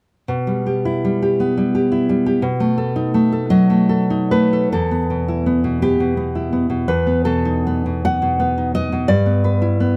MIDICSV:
0, 0, Header, 1, 2, 480
1, 0, Start_track
1, 0, Key_signature, 1, "minor"
1, 0, Tempo, 763359
1, 176, Time_signature, 6, 3, 24, 8
1, 653, Tempo, 699301
1, 2093, Tempo, 752823
1, 2573, Tempo, 832178
1, 3053, Tempo, 719424
1, 4493, Tempo, 762389
1, 5453, Tempo, 696056
1, 6531, End_track
2, 0, Start_track
2, 0, Title_t, "Nylon-string guitar"
2, 0, Program_c, 0, 24
2, 178, Note_on_c, 0, 47, 47
2, 296, Note_on_c, 0, 55, 36
2, 418, Note_on_c, 0, 67, 41
2, 536, Note_on_c, 0, 64, 42
2, 650, Note_off_c, 0, 55, 0
2, 658, Note_on_c, 0, 55, 42
2, 772, Note_off_c, 0, 67, 0
2, 781, Note_on_c, 0, 67, 41
2, 901, Note_on_c, 0, 59, 38
2, 1013, Note_off_c, 0, 55, 0
2, 1021, Note_on_c, 0, 55, 39
2, 1131, Note_off_c, 0, 67, 0
2, 1140, Note_on_c, 0, 67, 44
2, 1247, Note_off_c, 0, 64, 0
2, 1256, Note_on_c, 0, 64, 39
2, 1369, Note_off_c, 0, 55, 0
2, 1377, Note_on_c, 0, 55, 44
2, 1486, Note_off_c, 0, 67, 0
2, 1494, Note_on_c, 0, 67, 47
2, 1582, Note_off_c, 0, 47, 0
2, 1603, Note_on_c, 0, 47, 56
2, 1608, Note_off_c, 0, 59, 0
2, 1608, Note_off_c, 0, 64, 0
2, 1610, Note_off_c, 0, 55, 0
2, 1610, Note_off_c, 0, 67, 0
2, 1726, Note_on_c, 0, 57, 43
2, 1846, Note_on_c, 0, 69, 46
2, 1970, Note_on_c, 0, 63, 48
2, 2089, Note_off_c, 0, 57, 0
2, 2097, Note_on_c, 0, 57, 49
2, 2205, Note_off_c, 0, 69, 0
2, 2213, Note_on_c, 0, 69, 47
2, 2325, Note_on_c, 0, 54, 47
2, 2326, Note_on_c, 0, 75, 75
2, 2444, Note_off_c, 0, 57, 0
2, 2451, Note_on_c, 0, 57, 44
2, 2567, Note_off_c, 0, 69, 0
2, 2575, Note_on_c, 0, 69, 48
2, 2690, Note_off_c, 0, 63, 0
2, 2696, Note_on_c, 0, 63, 47
2, 2799, Note_off_c, 0, 75, 0
2, 2815, Note_off_c, 0, 57, 0
2, 2817, Note_on_c, 0, 71, 64
2, 2821, Note_on_c, 0, 57, 44
2, 2935, Note_off_c, 0, 69, 0
2, 2942, Note_on_c, 0, 69, 47
2, 3027, Note_off_c, 0, 47, 0
2, 3043, Note_off_c, 0, 71, 0
2, 3048, Note_off_c, 0, 69, 0
2, 3053, Note_off_c, 0, 54, 0
2, 3055, Note_off_c, 0, 57, 0
2, 3055, Note_off_c, 0, 63, 0
2, 3055, Note_on_c, 0, 69, 64
2, 3058, Note_on_c, 0, 40, 48
2, 3181, Note_on_c, 0, 59, 37
2, 3306, Note_on_c, 0, 47, 35
2, 3428, Note_on_c, 0, 64, 39
2, 3540, Note_off_c, 0, 59, 0
2, 3548, Note_on_c, 0, 59, 40
2, 3659, Note_off_c, 0, 47, 0
2, 3667, Note_on_c, 0, 47, 38
2, 3760, Note_off_c, 0, 69, 0
2, 3779, Note_off_c, 0, 59, 0
2, 3787, Note_on_c, 0, 59, 39
2, 3788, Note_on_c, 0, 67, 64
2, 3899, Note_off_c, 0, 47, 0
2, 3907, Note_on_c, 0, 47, 37
2, 4012, Note_off_c, 0, 59, 0
2, 4020, Note_on_c, 0, 59, 39
2, 4133, Note_off_c, 0, 64, 0
2, 4141, Note_on_c, 0, 64, 36
2, 4249, Note_off_c, 0, 59, 0
2, 4257, Note_on_c, 0, 59, 40
2, 4363, Note_off_c, 0, 47, 0
2, 4371, Note_on_c, 0, 47, 41
2, 4466, Note_off_c, 0, 67, 0
2, 4468, Note_off_c, 0, 40, 0
2, 4492, Note_off_c, 0, 47, 0
2, 4493, Note_on_c, 0, 40, 53
2, 4494, Note_off_c, 0, 59, 0
2, 4494, Note_on_c, 0, 71, 64
2, 4495, Note_off_c, 0, 64, 0
2, 4610, Note_on_c, 0, 59, 36
2, 4722, Note_off_c, 0, 71, 0
2, 4725, Note_on_c, 0, 69, 66
2, 4728, Note_on_c, 0, 47, 38
2, 4854, Note_on_c, 0, 63, 42
2, 4981, Note_off_c, 0, 59, 0
2, 4989, Note_on_c, 0, 59, 43
2, 5101, Note_off_c, 0, 47, 0
2, 5109, Note_on_c, 0, 47, 38
2, 5208, Note_off_c, 0, 69, 0
2, 5221, Note_off_c, 0, 59, 0
2, 5229, Note_on_c, 0, 59, 42
2, 5229, Note_on_c, 0, 78, 76
2, 5329, Note_off_c, 0, 47, 0
2, 5336, Note_on_c, 0, 47, 40
2, 5441, Note_off_c, 0, 59, 0
2, 5448, Note_on_c, 0, 59, 45
2, 5563, Note_off_c, 0, 63, 0
2, 5572, Note_on_c, 0, 63, 42
2, 5666, Note_off_c, 0, 78, 0
2, 5682, Note_off_c, 0, 59, 0
2, 5689, Note_on_c, 0, 75, 76
2, 5690, Note_on_c, 0, 59, 45
2, 5803, Note_off_c, 0, 47, 0
2, 5811, Note_on_c, 0, 47, 46
2, 5896, Note_off_c, 0, 40, 0
2, 5915, Note_off_c, 0, 75, 0
2, 5920, Note_on_c, 0, 74, 88
2, 5923, Note_on_c, 0, 43, 58
2, 5925, Note_off_c, 0, 63, 0
2, 5926, Note_off_c, 0, 59, 0
2, 5927, Note_off_c, 0, 47, 0
2, 6043, Note_on_c, 0, 59, 42
2, 6169, Note_on_c, 0, 71, 46
2, 6289, Note_on_c, 0, 64, 47
2, 6409, Note_off_c, 0, 59, 0
2, 6417, Note_on_c, 0, 59, 47
2, 6527, Note_off_c, 0, 71, 0
2, 6531, Note_off_c, 0, 43, 0
2, 6531, Note_off_c, 0, 59, 0
2, 6531, Note_off_c, 0, 64, 0
2, 6531, Note_off_c, 0, 74, 0
2, 6531, End_track
0, 0, End_of_file